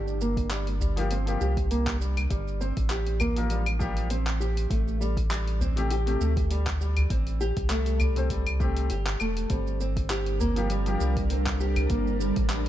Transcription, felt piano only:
0, 0, Header, 1, 2, 480
1, 0, Start_track
1, 0, Key_signature, -2, "minor"
1, 0, Tempo, 600000
1, 1845, Time_signature, 4, 2, 24, 8
1, 10150, End_track
2, 0, Start_track
2, 0, Title_t, "Felt piano"
2, 0, Program_c, 0, 0
2, 771, Note_on_c, 0, 53, 81
2, 781, Note_on_c, 0, 58, 75
2, 788, Note_on_c, 0, 67, 89
2, 881, Note_off_c, 0, 53, 0
2, 886, Note_off_c, 0, 58, 0
2, 890, Note_off_c, 0, 67, 0
2, 1009, Note_on_c, 0, 53, 74
2, 1018, Note_on_c, 0, 58, 76
2, 1026, Note_on_c, 0, 67, 83
2, 1199, Note_off_c, 0, 53, 0
2, 1203, Note_off_c, 0, 58, 0
2, 1208, Note_off_c, 0, 67, 0
2, 2689, Note_on_c, 0, 53, 77
2, 2698, Note_on_c, 0, 58, 65
2, 2705, Note_on_c, 0, 70, 84
2, 2879, Note_off_c, 0, 53, 0
2, 2883, Note_off_c, 0, 58, 0
2, 2887, Note_off_c, 0, 70, 0
2, 3034, Note_on_c, 0, 53, 95
2, 3043, Note_on_c, 0, 58, 83
2, 3050, Note_on_c, 0, 67, 105
2, 3236, Note_off_c, 0, 53, 0
2, 3240, Note_off_c, 0, 58, 0
2, 3243, Note_off_c, 0, 67, 0
2, 4609, Note_on_c, 0, 48, 82
2, 4618, Note_on_c, 0, 57, 71
2, 4625, Note_on_c, 0, 67, 94
2, 4721, Note_off_c, 0, 48, 0
2, 4725, Note_off_c, 0, 57, 0
2, 4728, Note_off_c, 0, 67, 0
2, 4849, Note_on_c, 0, 48, 82
2, 4858, Note_on_c, 0, 57, 73
2, 4865, Note_on_c, 0, 67, 85
2, 5039, Note_off_c, 0, 48, 0
2, 5044, Note_off_c, 0, 57, 0
2, 5047, Note_off_c, 0, 67, 0
2, 6527, Note_on_c, 0, 48, 75
2, 6535, Note_on_c, 0, 57, 65
2, 6542, Note_on_c, 0, 72, 84
2, 6718, Note_off_c, 0, 48, 0
2, 6722, Note_off_c, 0, 57, 0
2, 6726, Note_off_c, 0, 72, 0
2, 6877, Note_on_c, 0, 48, 93
2, 6882, Note_on_c, 0, 57, 85
2, 6891, Note_on_c, 0, 67, 98
2, 7077, Note_off_c, 0, 48, 0
2, 7080, Note_off_c, 0, 57, 0
2, 7084, Note_off_c, 0, 67, 0
2, 8448, Note_on_c, 0, 53, 78
2, 8456, Note_on_c, 0, 58, 72
2, 8464, Note_on_c, 0, 67, 89
2, 8560, Note_off_c, 0, 53, 0
2, 8564, Note_off_c, 0, 58, 0
2, 8568, Note_off_c, 0, 67, 0
2, 8688, Note_on_c, 0, 53, 80
2, 8695, Note_on_c, 0, 58, 69
2, 8705, Note_on_c, 0, 67, 91
2, 8879, Note_off_c, 0, 53, 0
2, 8882, Note_off_c, 0, 58, 0
2, 8887, Note_off_c, 0, 67, 0
2, 10150, End_track
0, 0, End_of_file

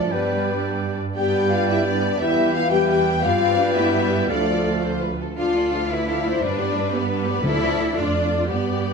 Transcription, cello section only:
0, 0, Header, 1, 2, 480
1, 0, Start_track
1, 0, Tempo, 347222
1, 152, Time_signature, 6, 3, 24, 8
1, 4949, Tempo, 357782
1, 7829, Tempo, 345821
1, 12281, End_track
2, 0, Start_track
2, 0, Title_t, "Cello section"
2, 0, Program_c, 0, 48
2, 148, Note_on_c, 0, 55, 45
2, 1225, Note_off_c, 0, 55, 0
2, 1587, Note_on_c, 0, 59, 53
2, 2269, Note_off_c, 0, 59, 0
2, 2319, Note_on_c, 0, 59, 55
2, 3720, Note_off_c, 0, 59, 0
2, 3752, Note_on_c, 0, 55, 57
2, 4465, Note_on_c, 0, 59, 68
2, 4467, Note_off_c, 0, 55, 0
2, 4705, Note_off_c, 0, 59, 0
2, 4718, Note_on_c, 0, 60, 65
2, 4949, Note_off_c, 0, 60, 0
2, 4961, Note_on_c, 0, 62, 66
2, 5053, Note_off_c, 0, 62, 0
2, 5173, Note_on_c, 0, 59, 73
2, 5884, Note_off_c, 0, 59, 0
2, 5900, Note_on_c, 0, 57, 61
2, 6995, Note_off_c, 0, 57, 0
2, 7362, Note_on_c, 0, 65, 78
2, 8022, Note_off_c, 0, 65, 0
2, 8069, Note_on_c, 0, 64, 71
2, 8795, Note_off_c, 0, 64, 0
2, 8795, Note_on_c, 0, 62, 74
2, 9508, Note_on_c, 0, 59, 74
2, 9509, Note_off_c, 0, 62, 0
2, 10214, Note_on_c, 0, 64, 98
2, 10222, Note_off_c, 0, 59, 0
2, 10921, Note_off_c, 0, 64, 0
2, 10925, Note_on_c, 0, 62, 75
2, 11653, Note_off_c, 0, 62, 0
2, 11662, Note_on_c, 0, 59, 55
2, 12281, Note_off_c, 0, 59, 0
2, 12281, End_track
0, 0, End_of_file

